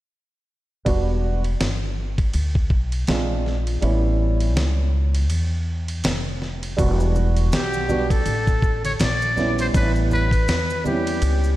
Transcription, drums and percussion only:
0.86 kick, ride
1.44 ride
1.61 snare, hi-hat pedal, ride
2.18 kick, ride
2.33 ride
2.55 kick
2.70 kick
2.92 ride
3.07 snare, hi-hat pedal, ride
3.46 snare
3.67 ride
3.82 ride
4.40 ride
4.57 snare, hi-hat pedal, ride
5.15 ride
5.30 ride
5.88 ride
6.04 snare, hi-hat pedal, ride
6.42 snare
6.63 ride
6.79 kick, ride, maracas
7.00 maracas
7.16 low conga, maracas
7.37 ride, maracas
7.52 snare, hi-hat pedal, ride, maracas
7.73 maracas
7.89 high conga, low conga, maracas
8.10 kick, ride, maracas
8.26 ride, high conga, maracas
8.47 kick, maracas
8.62 kick, maracas
8.85 ride, high conga, maracas
8.99 snare, hi-hat pedal, ride, maracas
9.22 maracas
9.37 snare, low conga, maracas
9.59 ride, maracas
9.74 kick, ride, maracas
9.96 maracas
10.11 low conga, maracas
10.31 kick, ride, maracas
10.48 snare, hi-hat pedal, ride, maracas
10.70 maracas
10.86 high conga, low conga, maracas
11.07 ride, maracas
11.22 ride, high conga, maracas
11.44 maracas

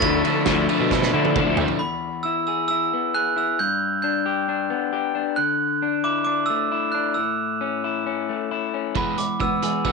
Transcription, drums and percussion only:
0.02 kick, ride
0.25 ride
0.46 kick, snare, ride
0.69 ride
0.91 kick, snare
1.02 snare
1.25 high tom
1.36 kick, mid tom
1.57 floor tom
1.68 floor tom
8.95 kick
9.18 closed hi-hat
9.40 kick
9.62 closed hi-hat
9.85 kick

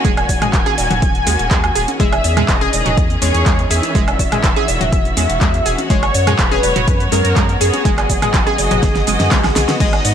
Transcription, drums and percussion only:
0.05 kick, closed hi-hat, shaker
0.17 closed hi-hat, high bongo, high woodblock, shaker
0.29 kick, open hi-hat, high bongo, shaker
0.42 closed hi-hat, mid tom, high woodblock, shaker
0.54 kick, clap, closed hi-hat, shaker
0.66 closed hi-hat, high conga, shaker
0.78 open hi-hat, high bongo, shaker
0.91 closed hi-hat, mid tom, shaker
1.02 kick, closed hi-hat, shaker
1.15 closed hi-hat, shaker
1.27 open hi-hat, high conga, shaker
1.39 closed hi-hat, shaker
1.51 kick, clap, closed hi-hat, shaker
1.64 closed hi-hat, high woodblock, shaker
1.75 open hi-hat, shaker
1.88 closed hi-hat, high conga, shaker
2.00 kick, closed hi-hat, shaker
2.13 closed hi-hat, high bongo, high woodblock, shaker
2.24 open hi-hat, high bongo, shaker
2.37 closed hi-hat, mid tom, high woodblock, shaker
2.49 kick, clap, closed hi-hat, shaker
2.61 closed hi-hat, high conga, shaker
2.73 open hi-hat, high bongo, shaker
2.86 closed hi-hat, mid tom, shaker
2.97 kick, closed hi-hat, shaker
3.10 closed hi-hat, shaker
3.22 open hi-hat, high conga, shaker
3.35 closed hi-hat, shaker
3.46 kick, clap, closed hi-hat, shaker
3.59 closed hi-hat, shaker
3.71 open hi-hat, shaker
3.83 closed hi-hat, high conga, shaker
3.95 kick, closed hi-hat, shaker
4.08 closed hi-hat, high bongo, high woodblock, shaker
4.19 kick, open hi-hat, high bongo, shaker
4.32 closed hi-hat, mid tom, high woodblock, shaker
4.44 kick, clap, closed hi-hat, shaker
4.56 closed hi-hat, high conga, shaker
4.68 open hi-hat, high bongo, shaker
4.81 closed hi-hat, mid tom, shaker
4.93 kick, closed hi-hat, shaker
5.05 closed hi-hat, shaker
5.17 open hi-hat, high conga, shaker
5.30 closed hi-hat, shaker
5.41 kick, clap, closed hi-hat, shaker
5.54 closed hi-hat, shaker
5.66 open hi-hat, shaker
5.78 closed hi-hat, high conga, shaker
5.90 kick, closed hi-hat, shaker
6.03 closed hi-hat, high bongo, high woodblock, shaker
6.14 open hi-hat, high bongo, shaker
6.27 closed hi-hat, mid tom, high woodblock, shaker
6.39 kick, clap, closed hi-hat, shaker
6.52 closed hi-hat, high conga, shaker
6.63 open hi-hat, high bongo, shaker
6.76 closed hi-hat, mid tom, shaker
6.88 kick, closed hi-hat, shaker
7.00 closed hi-hat, shaker
7.12 open hi-hat, high conga, shaker
7.25 closed hi-hat, shaker
7.36 kick, clap, closed hi-hat, shaker
7.49 closed hi-hat, shaker
7.61 open hi-hat, shaker
7.74 closed hi-hat, high conga, shaker
7.85 kick, closed hi-hat, shaker
7.98 clap, closed hi-hat, high bongo, high woodblock, shaker
8.10 kick, open hi-hat, high bongo, shaker
8.22 closed hi-hat, mid tom, high woodblock, shaker
8.34 kick, clap, closed hi-hat, shaker
8.47 closed hi-hat, high conga, shaker
8.58 open hi-hat, high bongo, shaker
8.71 closed hi-hat, mid tom, shaker
8.83 kick, snare, closed hi-hat, shaker
8.95 snare, closed hi-hat, shaker
9.07 open hi-hat, high conga, shaker
9.20 snare, closed hi-hat, shaker
9.32 kick, snare, clap, closed hi-hat, shaker
9.44 snare, closed hi-hat, high woodblock, shaker
9.56 snare, open hi-hat, shaker
9.69 snare, closed hi-hat, high conga, shaker
9.80 kick, closed hi-hat, crash, shaker
9.93 closed hi-hat, high bongo, high woodblock, shaker
10.05 open hi-hat, high bongo, shaker

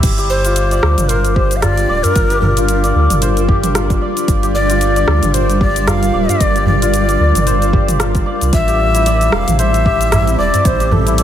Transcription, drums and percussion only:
0.03 kick, closed hi-hat, crash, shaker
0.18 closed hi-hat, shaker
0.45 closed hi-hat, shaker
0.56 closed hi-hat, shaker
0.71 closed hi-hat, shaker
0.83 cross-stick
0.98 closed hi-hat, mid tom, shaker
1.09 closed hi-hat, shaker
1.25 closed hi-hat, shaker
1.36 kick
1.51 closed hi-hat, shaker
1.62 cross-stick, closed hi-hat, udu, shaker
1.77 closed hi-hat, shaker
2.04 closed hi-hat, udu, shaker
2.16 kick, closed hi-hat, shaker
2.30 closed hi-hat, shaker
2.42 mid tom, udu
2.57 closed hi-hat, shaker
2.68 closed hi-hat, shaker
2.84 closed hi-hat, shaker
3.10 closed hi-hat, mid tom, shaker
3.22 closed hi-hat, shaker
3.37 closed hi-hat, shaker
3.48 kick, udu
3.63 closed hi-hat, mid tom, shaker
3.75 cross-stick, closed hi-hat, shaker
3.90 kick, closed hi-hat, shaker
4.17 closed hi-hat, shaker
4.28 kick, closed hi-hat, shaker
4.43 closed hi-hat, shaker
4.70 closed hi-hat, shaker
4.81 closed hi-hat, shaker
4.96 closed hi-hat, shaker
5.08 cross-stick
5.23 closed hi-hat, mid tom, shaker
5.34 closed hi-hat, shaker
5.50 closed hi-hat, shaker
5.61 kick
5.76 closed hi-hat, shaker
5.87 cross-stick, closed hi-hat, udu, shaker
6.03 closed hi-hat, shaker
6.29 closed hi-hat, udu, shaker
6.41 kick, closed hi-hat, shaker
6.56 closed hi-hat, shaker
6.66 mid tom, udu
6.82 closed hi-hat, shaker
6.94 closed hi-hat, shaker
7.09 closed hi-hat, shaker
7.35 closed hi-hat, mid tom, shaker
7.47 closed hi-hat, shaker
7.62 closed hi-hat, shaker
7.73 kick, udu
7.88 closed hi-hat, mid tom, shaker
8.00 cross-stick, closed hi-hat, shaker
8.15 kick, closed hi-hat, shaker
8.41 closed hi-hat, shaker
8.53 kick, closed hi-hat, shaker
8.68 closed hi-hat, shaker
8.95 closed hi-hat, shaker
9.06 closed hi-hat, shaker
9.21 closed hi-hat, shaker
9.32 cross-stick
9.48 closed hi-hat, mid tom, shaker
9.59 closed hi-hat, shaker
9.74 closed hi-hat, shaker
9.86 kick
10.01 closed hi-hat, shaker
10.12 cross-stick, closed hi-hat, udu, shaker
10.27 closed hi-hat, shaker
10.54 closed hi-hat, udu, shaker
10.65 kick, closed hi-hat, shaker
10.80 closed hi-hat, shaker
10.91 mid tom, udu
11.07 closed hi-hat, shaker
11.18 closed hi-hat, shaker

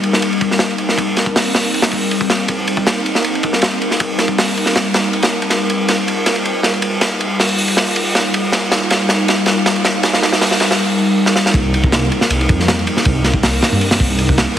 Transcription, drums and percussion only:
0.03 ride
0.13 snare
0.22 ride
0.33 ride
0.41 kick, ride
0.51 snare
0.59 snare, ride
0.70 ride
0.78 ride
0.89 snare
0.98 kick, ride
1.17 snare, ride
1.26 kick
1.36 snare, open hi-hat
1.45 ride
1.55 snare, open hi-hat
1.64 ride
1.74 ride
1.82 snare, open hi-hat
1.91 kick, ride
2.11 ride
2.21 kick
2.30 snare, ride
2.48 kick, ride
2.68 ride
2.77 kick
2.87 snare, ride
3.06 ride
3.15 snare
3.24 ride
3.35 ride
3.43 kick, ride
3.53 snare
3.62 snare, ride
3.71 ride
3.82 ride
3.91 snare
4.00 kick, ride
4.19 snare, ride
4.28 kick
4.38 snare, open hi-hat
4.48 ride
4.57 ride
4.66 snare
4.75 snare, ride
4.85 ride
4.94 snare, ride
5.04 ride
5.13 ride
5.22 snare, ride
5.31 ride
5.42 ride
5.50 snare, ride
5.70 ride
5.89 snare, ride
6.08 ride
6.26 snare, ride
6.36 ride
6.45 ride
6.63 snare, ride
6.74 ride
6.82 ride
7.01 snare, ride
7.21 ride
7.40 snare, open hi-hat
7.49 ride
7.59 open hi-hat
7.68 ride
7.77 snare, ride
7.87 open hi-hat
7.96 ride
8.15 snare, ride
8.34 ride
8.52 snare, ride
8.71 snare, ride
8.90 snare, ride
9.09 snare, ride
9.28 snare, ride
9.38 ride
9.46 snare, ride
9.66 snare, ride
9.76 ride
9.85 snare, ride
10.03 snare, ride
10.13 snare
10.22 snare, ride
10.32 snare
10.41 snare, open hi-hat
10.51 snare, ride
10.60 snare, ride
10.71 snare
11.26 snare
11.36 snare
11.46 snare
11.54 kick, ride
11.74 ride
11.84 kick
11.92 snare, ride
12.12 ride
12.21 snare
12.30 ride
12.41 ride
12.49 kick, ride
12.60 snare
12.68 snare, ride
12.79 ride
12.87 ride
12.97 snare
13.05 kick, ride
13.24 snare, ride
13.34 kick
13.43 snare, open hi-hat
13.53 ride
13.62 snare, open hi-hat
13.72 ride
13.81 ride
13.91 snare, open hi-hat
14.00 kick, ride
14.19 ride
14.29 kick
14.38 snare, ride

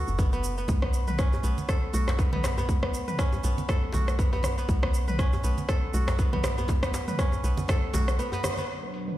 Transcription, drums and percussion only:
0.08 shaker
0.19 kick, shaker
0.33 shaker
0.44 shaker
0.58 shaker
0.68 kick, djembe tone, high conga, shaker
0.82 kick, cross-stick
0.93 shaker
1.07 mid tom, high conga, shaker
1.19 kick, cross-stick, shaker
1.33 djembe tone, shaker
1.43 high conga, shaker
1.58 low conga, shaker
1.69 kick, cross-stick, shaker
1.94 high conga, shaker
2.08 cross-stick, djembe slap, djembe tone, shaker
2.19 kick, shaker
2.33 mid tom, low conga
2.44 cross-stick, djembe slap, shaker
2.58 djembe tone, shaker
2.69 kick, high conga, shaker
2.83 kick, cross-stick
2.94 shaker
3.08 mid tom, shaker
3.19 kick, cross-stick, shaker
3.33 djembe tone, shaker
3.43 high conga, shaker
3.58 low conga, shaker
3.68 kick, cross-stick, high conga, djembe tone, shaker
3.92 djembe slap, high conga, low conga, shaker
4.08 cross-stick, high conga, shaker
4.19 kick, shaker
4.33 djembe tone
4.43 cross-stick, djembe tone, low conga, shaker
4.58 shaker
4.68 kick, djembe tone, high conga, shaker
4.83 kick, cross-stick
4.94 shaker
5.08 mid tom, high conga, shaker
5.19 kick, cross-stick, shaker
5.33 djembe tone, shaker
5.43 high conga, shaker
5.58 low conga, shaker
5.69 kick, cross-stick, shaker
5.94 high conga, shaker
6.08 cross-stick, djembe slap, djembe tone, shaker
6.19 kick, shaker
6.33 mid tom, low conga
6.44 cross-stick, djembe slap, shaker
6.58 djembe tone, shaker
6.68 kick, djembe slap, high conga, djembe tone, shaker
6.83 kick, cross-stick, shaker
6.94 djembe slap, shaker
7.08 mid tom, high conga, shaker
7.19 kick, cross-stick, shaker
7.32 djembe tone, shaker
7.44 high conga, shaker
7.57 low conga, shaker
7.68 kick, cross-stick, high conga, djembe tone, shaker
7.94 djembe slap, high conga, low conga, shaker
8.08 cross-stick, high conga, shaker
8.19 shaker
8.32 djembe tone, shaker
8.44 cross-stick, djembe tone, low conga, shaker
8.57 low conga, shaker
8.69 shaker
8.94 open hi-hat, shaker
9.08 mid tom, shaker

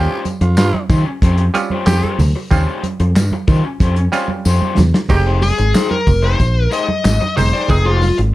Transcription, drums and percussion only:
0.10 muted conga
0.25 closed hi-hat, tambourine, high conga
0.41 closed hi-hat
0.57 snare, clap, closed hi-hat, tambourine
0.74 muted conga, high conga
0.90 kick, closed hi-hat, tambourine, high conga, low conga
1.22 kick, closed hi-hat, tambourine
1.38 closed hi-hat
1.54 closed hi-hat, tambourine
1.70 high conga
1.87 snare, clap, closed hi-hat, tambourine
2.04 muted conga, high conga
2.19 open hi-hat, tambourine, high conga, low conga
2.51 kick, closed hi-hat, tambourine, muted conga, low conga
2.67 muted conga
2.83 closed hi-hat, high conga
3.00 closed hi-hat
3.16 snare, clap, closed hi-hat, tambourine
3.32 high conga
3.48 kick, closed hi-hat, tambourine, high conga, low conga
3.80 kick, closed hi-hat, tambourine, muted conga
3.96 closed hi-hat
4.13 closed hi-hat, tambourine
4.28 high conga
4.45 tambourine
4.62 muted conga, high conga
4.77 snare, tambourine, high conga, low conga
4.94 snare
5.09 kick, crash, tambourine, muted conga, low conga
5.41 open hi-hat, tambourine, high conga
5.59 closed hi-hat
5.74 snare, clap, closed hi-hat, tambourine, muted conga
5.91 muted conga, high conga
6.07 kick, open hi-hat, tambourine, low conga
6.39 kick, closed hi-hat, tambourine, muted conga
6.71 closed hi-hat, tambourine
6.88 high conga
7.05 snare, clap, closed hi-hat, tambourine
7.22 high conga
7.37 open hi-hat, tambourine, high conga, low conga
7.68 kick, closed hi-hat, tambourine, low conga
7.86 muted conga
8.02 open hi-hat, tambourine, high conga
8.18 closed hi-hat

